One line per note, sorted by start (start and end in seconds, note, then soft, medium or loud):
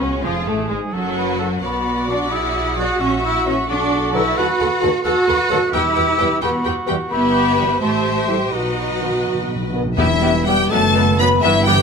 0.00 0.23 C#2 medium
0.00 0.24 C#3 medium
0.00 0.23 C#4 medium
0.00 0.24 C#4 medium
0.00 0.24 F#4 medium
0.00 0.27 C#6 medium
0.23 0.47 F1 medium
0.23 0.47 F2 medium
0.23 0.31 F3 medium
0.23 0.47 F3 medium
0.23 0.46 F4 medium
0.23 0.47 F4 medium
0.23 0.95 G#4 medium
0.23 0.50 F5 medium
0.47 0.70 A1 medium
0.47 0.70 A2 medium
0.47 0.70 A3 medium
0.47 0.55 A3 medium
0.47 0.70 A3 medium
0.47 0.58 A3 medium
0.47 0.71 A5 medium
0.69 0.79 G#1 medium
0.69 0.93 G#2 medium
0.69 0.77 G#3 medium
0.69 0.78 G#3 medium
0.69 0.93 G#3 medium
0.69 0.78 G#3 soft
0.69 0.81 G#3 medium
0.73 0.94 G#5 medium
0.93 1.62 F#1 medium
0.93 1.61 F#2 medium
0.93 1.61 F#3 medium
0.93 1.62 F#3 medium
0.93 1.61 F#3 medium
0.93 1.61 F#4 medium
0.93 1.19 A4 medium
0.93 1.62 F#5 medium
1.18 1.39 B4 medium
1.39 1.50 A4 medium
1.62 2.97 B1 medium
1.62 2.07 B3 medium
1.62 2.32 F#4 medium
1.62 3.65 F#4 medium
1.62 2.97 D5 medium
1.62 4.33 F#5 medium
1.62 2.08 B5 medium
2.07 2.16 B2 medium
2.07 2.16 F#3 medium
2.07 2.31 D4 medium
2.07 2.16 F#4 medium
2.07 2.17 D5 medium
2.07 2.33 D6 medium
2.31 2.77 E4 medium
2.31 3.00 G#4 medium
2.31 2.78 E6 medium
2.77 2.85 B2 medium
2.77 2.85 F#3 medium
2.77 3.00 F#4 loud
2.77 2.86 F#4 medium
2.77 2.86 D5 medium
2.77 3.02 F#6 medium
3.00 3.67 A#1 medium
3.00 3.23 C#4 medium
3.00 3.68 F#4 medium
3.00 3.65 E5 medium
3.00 3.26 C#6 medium
3.24 3.46 E4 medium
3.24 3.47 E6 medium
3.45 3.54 E3 medium
3.45 3.53 F#3 medium
3.45 3.55 C#4 medium
3.45 3.54 F#4 medium
3.45 3.54 C#5 medium
3.45 3.72 C#6 medium
3.69 4.37 B1 medium
3.69 4.14 D4 loud
3.69 4.36 F#4 medium
3.69 4.33 A4 medium
3.69 4.33 D5 medium
3.69 4.14 D6 medium
4.12 4.21 D3 medium
4.12 4.21 F#3 medium
4.12 4.37 E4 loud
4.12 4.21 A4 medium
4.12 4.21 B4 medium
4.12 4.39 E6 medium
4.37 4.46 D#2 medium
4.37 5.03 F#4 loud
4.37 4.45 A4 medium
4.37 4.45 B4 medium
4.37 4.81 B4 medium
4.37 4.46 F#5 medium
4.37 4.81 F#6 medium
4.59 4.68 D#2 medium
4.59 4.68 A4 medium
4.59 4.68 B4 medium
4.59 4.67 F#5 medium
4.81 4.91 D#2 medium
4.81 4.90 D#3 medium
4.81 4.90 F#3 medium
4.81 4.89 A4 medium
4.81 4.91 A4 medium
4.81 4.89 B4 medium
4.81 4.91 B4 medium
4.81 4.89 F#5 medium
5.04 5.14 D#2 medium
5.04 5.72 F#4 loud
5.04 5.26 A4 medium
5.04 5.13 A4 medium
5.04 5.13 B4 medium
5.04 5.12 F#5 medium
5.04 5.75 F#6 medium
5.27 5.36 D#2 medium
5.27 5.35 A4 medium
5.27 5.35 B4 medium
5.27 5.50 B4 medium
5.27 5.36 F#5 medium
5.49 5.59 D#2 medium
5.49 5.58 D#3 medium
5.49 5.58 F#3 medium
5.49 5.58 A4 medium
5.49 5.59 A4 medium
5.49 5.61 A4 medium
5.49 5.58 B4 medium
5.49 5.57 F#5 medium
5.73 6.38 E2 medium
5.73 5.81 E2 medium
5.73 6.41 E4 loud
5.73 6.41 G4 medium
5.73 5.81 G4 medium
5.73 5.82 B4 medium
5.73 5.81 G5 medium
5.73 6.42 E6 medium
5.95 6.05 E2 medium
5.95 6.04 G4 medium
5.95 6.04 B4 medium
5.95 6.03 G5 medium
6.18 6.27 E2 medium
6.18 6.27 E3 medium
6.18 6.27 G3 medium
6.18 6.27 G4 medium
6.18 6.27 B4 medium
6.18 6.27 G5 medium
6.42 6.50 E2 medium
6.42 6.65 B3 medium
6.42 7.10 F#4 medium
6.42 6.50 G4 medium
6.42 6.50 B4 medium
6.42 6.50 G5 medium
6.42 6.65 B5 medium
6.64 6.73 E2 medium
6.64 6.73 G4 medium
6.64 6.74 B4 medium
6.64 6.72 G5 medium
6.86 6.96 E2 medium
6.86 6.97 E3 medium
6.86 6.97 G3 medium
6.86 6.95 G4 medium
6.86 6.96 G4 medium
6.86 6.95 B4 medium
6.86 6.95 G5 medium
7.10 7.77 G1 medium
7.10 7.77 B3 loud
7.10 7.34 E4 medium
7.10 7.77 G4 medium
7.10 7.77 B4 medium
7.10 7.77 E5 medium
7.10 7.77 B5 medium
7.35 7.57 G4 medium
7.56 7.67 E3 medium
7.56 7.67 G3 medium
7.56 7.65 G4 medium
7.56 7.65 B4 medium
7.56 7.81 B4 medium
7.81 8.51 A1 medium
7.81 8.28 A3 medium
7.81 8.51 G4 medium
7.81 8.52 C5 medium
7.81 8.54 C5 medium
7.81 8.51 E5 medium
7.81 8.30 A5 medium
8.28 8.37 E3 medium
8.28 8.37 G3 medium
8.28 8.37 A3 medium
8.28 8.37 G4 medium
8.28 8.36 C5 medium
8.28 8.53 G5 medium
8.51 9.75 B1 medium
8.51 8.58 B2 soft
8.51 9.24 F#3 medium
8.51 9.61 D#4 medium
8.51 9.78 F#4 medium
8.51 9.75 B4 medium
8.51 9.77 D#5 medium
8.51 9.25 F#5 medium
8.59 8.66 B2 soft
8.67 8.74 B2 soft
8.76 8.81 B2 soft
8.82 8.89 B2 soft
8.90 8.96 B2 soft
8.97 9.03 B2 soft
8.97 9.09 D#3 medium
8.97 9.09 B3 medium
8.97 9.09 F#4 medium
8.97 9.09 B4 medium
9.04 9.10 B2 soft
9.11 9.18 B2 soft
9.19 9.25 B2 medium
9.27 9.33 B2 medium
9.34 9.40 B2 medium
9.41 9.47 B2 medium
9.49 9.54 B2 medium
9.55 9.62 B2 medium
9.63 9.70 B2 medium
9.71 9.78 B2 medium
9.71 9.82 D#3 medium
9.71 9.82 B3 medium
9.71 9.82 F#4 medium
9.71 9.82 B4 medium
9.79 9.85 B2 medium
9.86 9.93 B2 loud
9.96 10.63 E1 medium
9.96 10.67 E2 loud
9.96 10.62 E2 medium
9.96 10.43 E3 medium
9.96 10.05 G3 medium
9.96 10.68 G3 medium
9.96 10.05 B3 medium
9.96 11.82 B3 medium
9.96 10.06 E4 medium
9.96 10.43 E4 medium
9.96 10.06 G4 medium
9.96 10.43 E5 medium
9.96 10.49 E5 medium
10.22 10.30 G3 medium
10.22 10.30 B3 medium
10.22 10.30 E4 medium
10.22 10.30 G4 medium
10.46 10.70 G3 medium
10.46 10.55 G3 medium
10.46 10.56 B3 medium
10.46 10.55 E4 medium
10.46 10.72 G4 medium
10.46 10.55 G4 medium
10.46 10.71 G5 loud
10.46 10.71 G5 medium
10.69 11.35 F#1 medium
10.69 11.35 F#2 medium
10.69 11.44 D#3 medium
10.69 10.80 F#3 medium
10.69 11.18 A3 medium
10.69 10.80 B3 medium
10.69 10.80 D#4 medium
10.69 11.22 A4 medium
10.69 10.80 B4 medium
10.69 11.18 A5 loud
10.69 11.19 A5 medium
10.95 11.04 F#3 medium
10.95 11.04 B3 medium
10.95 11.03 D#4 medium
10.95 11.03 B4 medium
11.19 11.29 F#3 medium
11.19 11.42 B3 medium
11.19 11.29 B3 medium
11.19 11.27 D#4 medium
11.19 11.27 B4 medium
11.19 11.43 B4 medium
11.19 11.27 B5 loud
11.19 11.44 B5 medium
11.41 11.82 G1 medium
11.41 11.82 G2 medium
11.41 11.67 E3 medium
11.41 11.52 E3 medium
11.41 11.82 E3 medium
11.41 11.52 B3 medium
11.41 11.51 E4 medium
11.41 11.67 E4 medium
11.41 11.51 B4 medium
11.41 11.66 E5 loud
11.41 11.67 E5 medium
11.66 11.75 E3 medium
11.66 11.82 G3 medium
11.66 11.75 B3 medium
11.66 11.75 E4 medium
11.66 11.82 G4 loud
11.66 11.75 B4 medium
11.66 11.82 G5 loud
11.66 11.82 G5 medium